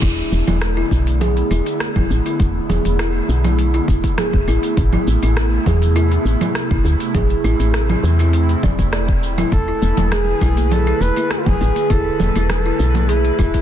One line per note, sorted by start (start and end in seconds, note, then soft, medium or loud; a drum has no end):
0.02 0.22 E1 loud
0.02 4.73 D3 medium
0.02 13.62 A3 medium
0.02 4.73 B3 medium
0.02 0.46 E4 loud
0.02 13.62 E4 medium
0.02 kick loud
0.02 open hi-hat medium
0.02 cabasa soft
0.32 0.42 E1 loud
0.32 cabasa medium
0.48 0.84 E1 medium
0.48 0.76 E4 medium
0.48 open hi-hat soft
0.48 low conga medium
0.48 cabasa soft
0.62 cross-stick loud
0.62 open hi-hat medium
0.62 cabasa soft
0.77 0.90 E4 medium
0.91 1.43 B1 medium
0.91 kick medium
0.91 cabasa medium
1.07 open hi-hat soft
1.07 cabasa soft
1.21 1.49 G#4 medium
1.21 open hi-hat medium
1.21 low conga medium
1.21 cabasa soft
1.37 open hi-hat soft
1.51 1.61 E1 loud
1.51 1.94 E4 loud
1.51 cabasa medium
1.66 open hi-hat soft
1.66 cabasa soft
1.80 cross-stick loud
1.80 open hi-hat medium
1.80 cabasa soft
1.96 2.05 E1 medium
1.96 2.24 E4 medium
1.96 kick loud
1.96 low conga medium
2.10 2.20 A1 loud
2.10 cabasa medium
2.26 2.39 E4 medium
2.26 open hi-hat soft
2.26 cabasa soft
2.40 2.60 E1 loud
2.40 kick loud
2.40 open hi-hat medium
2.40 cabasa soft
2.70 2.80 E1 loud
2.70 2.98 G#4 medium
2.70 low conga medium
2.70 cabasa medium
2.85 3.21 E1 medium
2.85 open hi-hat soft
2.85 cabasa soft
2.99 3.43 E4 loud
2.99 cross-stick loud
2.99 open hi-hat medium
2.99 cabasa soft
3.29 3.81 B1 medium
3.29 cabasa medium
3.44 3.73 E4 medium
3.44 open hi-hat soft
3.44 low conga medium
3.44 cabasa soft
3.59 open hi-hat medium
3.59 cabasa soft
3.74 3.88 E4 medium
3.74 open hi-hat soft
3.88 3.99 E1 medium
3.88 kick loud
3.88 cabasa medium
4.04 kick medium
4.04 open hi-hat soft
4.04 cabasa soft
4.18 4.46 G#4 medium
4.18 cross-stick loud
4.18 open hi-hat medium
4.18 low conga medium
4.18 cabasa soft
4.33 4.43 E1 medium
4.33 kick loud
4.48 4.58 A1 medium
4.48 4.77 E4 medium
4.48 cabasa medium
4.63 open hi-hat soft
4.63 cabasa soft
4.76 4.97 A1 loud
4.76 9.48 C3 medium
4.76 7.12 B3 medium
4.76 kick loud
4.76 open hi-hat medium
4.76 cabasa soft
4.93 5.21 E4 medium
4.93 low conga medium
5.07 5.17 A1 loud
5.07 cabasa medium
5.23 5.59 A1 medium
5.23 5.36 E4 medium
5.23 open hi-hat soft
5.23 cabasa soft
5.37 cross-stick loud
5.37 open hi-hat medium
5.37 cabasa soft
5.66 6.18 E2 medium
5.66 5.95 G#4 medium
5.66 kick medium
5.66 low conga medium
5.66 cabasa medium
5.82 open hi-hat soft
5.82 cabasa soft
5.96 6.40 E4 loud
5.96 open hi-hat medium
5.96 cabasa soft
6.12 open hi-hat soft
6.25 6.36 A1 medium
6.25 cabasa medium
6.41 6.69 E4 medium
6.41 open hi-hat soft
6.41 low conga medium
6.41 cabasa soft
6.55 cross-stick loud
6.55 open hi-hat medium
6.55 cabasa soft
6.71 6.80 A1 loud
6.71 6.84 E4 medium
6.71 kick loud
6.84 6.95 D2 medium
6.84 cabasa medium
7.00 open hi-hat soft
7.00 cabasa soft
7.14 7.35 A1 medium
7.14 9.50 C4 medium
7.14 7.43 G#4 medium
7.14 kick loud
7.14 open hi-hat medium
7.14 low conga medium
7.14 cabasa soft
7.30 open hi-hat soft
7.44 7.55 A1 loud
7.44 7.88 E4 medium
7.44 cabasa medium
7.60 7.96 A1 medium
7.60 open hi-hat soft
7.60 cabasa soft
7.74 cross-stick loud
7.74 open hi-hat medium
7.74 cabasa soft
7.90 8.18 E4 medium
7.90 low conga medium
8.03 8.55 E2 medium
8.03 cabasa medium
8.19 8.33 E4 medium
8.19 open hi-hat soft
8.19 cabasa soft
8.33 open hi-hat medium
8.33 cabasa soft
8.49 open hi-hat soft
8.63 8.74 E1 medium
8.63 8.78 D5 medium
8.63 kick loud
8.63 low conga medium
8.63 cabasa medium
8.79 9.45 E1 medium
8.79 kick medium
8.79 open hi-hat soft
8.79 cabasa soft
8.93 9.07 D5 medium
8.93 cross-stick loud
8.93 open hi-hat medium
8.93 cabasa soft
9.08 kick loud
9.08 open hi-hat soft
9.23 cabasa medium
9.38 9.51 E4 medium
9.38 open hi-hat soft
9.38 low conga medium
9.38 cabasa soft
9.52 9.73 E1 loud
9.52 13.62 D3 medium
9.52 10.08 A4 loud
9.52 13.62 B4 medium
9.52 kick loud
9.52 open hi-hat medium
9.52 cabasa soft
9.68 9.81 E4 medium
9.82 9.92 E1 loud
9.82 high conga medium
9.82 cabasa medium
9.97 10.34 E1 medium
9.97 open hi-hat soft
9.97 muted conga medium
9.97 high conga soft
9.97 low conga medium
9.97 cabasa soft
10.12 10.40 G#4 medium
10.12 10.74 G#4 loud
10.12 cross-stick loud
10.12 open hi-hat medium
10.12 low conga medium
10.12 cabasa soft
10.41 10.93 B1 medium
10.41 10.86 E4 loud
10.41 kick medium
10.41 low conga loud
10.41 cabasa medium
10.57 open hi-hat soft
10.57 high conga medium
10.57 cabasa soft
10.72 11.03 A4 loud
10.72 open hi-hat medium
10.72 low conga medium
10.72 cabasa soft
10.87 11.15 E4 medium
10.87 open hi-hat soft
11.01 11.11 E1 medium
11.01 11.33 B4 loud
11.01 muted conga soft
11.01 cabasa medium
11.17 11.30 E4 medium
11.17 open hi-hat soft
11.17 high conga soft
11.17 cabasa soft
11.31 11.40 G#4 loud
11.31 cross-stick loud
11.31 open hi-hat medium
11.31 cabasa soft
11.38 11.49 F4 medium
11.46 11.56 E1 medium
11.46 11.93 G#4 loud
11.46 kick loud
11.46 muted conga medium
11.46 low conga medium
11.61 11.71 A1 medium
11.61 11.89 G#4 medium
11.61 cabasa medium
11.76 open hi-hat soft
11.76 muted conga soft
11.76 cabasa soft
11.90 12.10 E1 loud
11.90 12.34 E4 medium
11.90 12.50 A4 loud
11.90 kick loud
11.90 open hi-hat medium
11.90 cabasa soft
12.20 12.30 E1 loud
12.20 high conga medium
12.20 low conga medium
12.20 cabasa medium
12.35 12.72 E1 medium
12.35 12.64 E4 medium
12.35 open hi-hat soft
12.35 muted conga soft
12.35 high conga soft
12.35 cabasa soft
12.50 13.11 A4 loud
12.50 cross-stick loud
12.50 open hi-hat medium
12.50 low conga medium
12.50 cabasa soft
12.66 12.79 E4 medium
12.79 13.31 B1 loud
12.79 low conga medium
12.79 cabasa medium
12.95 open hi-hat soft
12.95 high conga medium
12.95 low conga medium
12.95 cabasa soft
13.09 13.62 E4 medium
13.09 13.37 G#4 medium
13.09 open hi-hat medium
13.09 cabasa soft
13.25 open hi-hat soft
13.39 13.49 E1 loud
13.39 13.62 E4 loud
13.39 kick medium
13.39 muted conga medium
13.39 cabasa medium
13.54 kick medium
13.54 open hi-hat soft
13.54 cabasa soft